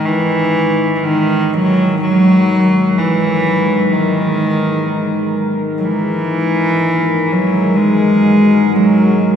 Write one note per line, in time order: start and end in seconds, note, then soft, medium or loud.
0.00 5.81 G#3 medium
0.00 8.57 D#4 medium
0.00 9.36 A#4 medium
0.05 0.96 E3 medium
0.96 1.05 E3 medium
1.04 1.55 D#3 medium
1.53 2.00 F#3 medium
2.01 2.99 F#3 loud
2.98 3.94 E3 medium
3.93 5.37 D#3 medium
5.78 5.86 F#3 medium
5.83 7.34 E3 medium
5.83 9.36 G#3 medium
6.32 9.36 F#4 medium
7.32 7.77 F#3 medium
7.76 8.77 G#3 medium
8.76 9.36 F#3 medium